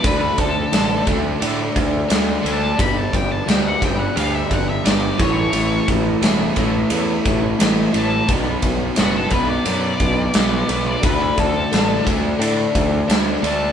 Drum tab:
RD |xxxxxxxx|xxxxxxxx|xxxxxxxx|xxxxxxxx|
SD |--o---o-|--o---o-|--o---o-|--o---o-|
BD |oo-o-o--|oo-o-o-o|-o-o-o--|oo-o-o--|

RD |xxxxxxxx|
SD |--o---o-|
BD |oo-o-o--|